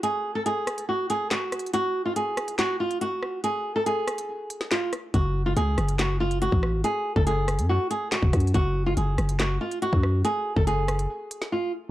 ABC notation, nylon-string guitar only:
X:1
M:4/4
L:1/16
Q:1/4=141
K:F#m
V:1 name="Nylon-string guitar"
G3 A G4 F2 G2 F4 | F3 ^E G4 F2 E2 F4 | G3 A G8 ^E2 z2 | F3 ^E G4 F2 E2 F4 |
G3 A G4 F2 G2 F4 | F3 ^E G4 F2 E2 F4 | G3 A G8 ^E2 z2 |]